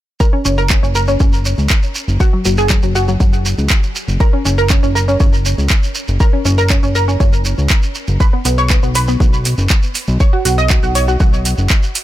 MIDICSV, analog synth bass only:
0, 0, Header, 1, 2, 480
1, 0, Start_track
1, 0, Key_signature, 6, "major"
1, 0, Tempo, 500000
1, 195, Time_signature, 4, 2, 24, 8
1, 11556, End_track
2, 0, Start_track
2, 0, Title_t, "Analog synth bass"
2, 0, Program_c, 0, 38
2, 434, Note_on_c, 0, 30, 97
2, 766, Note_off_c, 0, 30, 0
2, 797, Note_on_c, 0, 30, 80
2, 1124, Note_off_c, 0, 30, 0
2, 1154, Note_on_c, 0, 30, 88
2, 1486, Note_off_c, 0, 30, 0
2, 1517, Note_on_c, 0, 37, 78
2, 1616, Note_off_c, 0, 37, 0
2, 1997, Note_on_c, 0, 30, 86
2, 2096, Note_off_c, 0, 30, 0
2, 2354, Note_on_c, 0, 30, 97
2, 2686, Note_off_c, 0, 30, 0
2, 2717, Note_on_c, 0, 30, 81
2, 3044, Note_off_c, 0, 30, 0
2, 3074, Note_on_c, 0, 30, 87
2, 3406, Note_off_c, 0, 30, 0
2, 3438, Note_on_c, 0, 37, 78
2, 3536, Note_off_c, 0, 37, 0
2, 3917, Note_on_c, 0, 30, 91
2, 4016, Note_off_c, 0, 30, 0
2, 4274, Note_on_c, 0, 30, 96
2, 4606, Note_off_c, 0, 30, 0
2, 4638, Note_on_c, 0, 30, 79
2, 4965, Note_off_c, 0, 30, 0
2, 4995, Note_on_c, 0, 30, 90
2, 5326, Note_off_c, 0, 30, 0
2, 5358, Note_on_c, 0, 37, 79
2, 5456, Note_off_c, 0, 37, 0
2, 5838, Note_on_c, 0, 30, 91
2, 5936, Note_off_c, 0, 30, 0
2, 6195, Note_on_c, 0, 30, 98
2, 6526, Note_off_c, 0, 30, 0
2, 6558, Note_on_c, 0, 30, 81
2, 6884, Note_off_c, 0, 30, 0
2, 6915, Note_on_c, 0, 30, 90
2, 7246, Note_off_c, 0, 30, 0
2, 7277, Note_on_c, 0, 37, 80
2, 7376, Note_off_c, 0, 37, 0
2, 7757, Note_on_c, 0, 30, 92
2, 7856, Note_off_c, 0, 30, 0
2, 8114, Note_on_c, 0, 35, 92
2, 8446, Note_off_c, 0, 35, 0
2, 8477, Note_on_c, 0, 35, 80
2, 8804, Note_off_c, 0, 35, 0
2, 8835, Note_on_c, 0, 35, 90
2, 9166, Note_off_c, 0, 35, 0
2, 9197, Note_on_c, 0, 30, 83
2, 9296, Note_off_c, 0, 30, 0
2, 9677, Note_on_c, 0, 35, 91
2, 9775, Note_off_c, 0, 35, 0
2, 10034, Note_on_c, 0, 35, 96
2, 10366, Note_off_c, 0, 35, 0
2, 10397, Note_on_c, 0, 35, 82
2, 10724, Note_off_c, 0, 35, 0
2, 10754, Note_on_c, 0, 35, 93
2, 11086, Note_off_c, 0, 35, 0
2, 11118, Note_on_c, 0, 30, 79
2, 11216, Note_off_c, 0, 30, 0
2, 11556, End_track
0, 0, End_of_file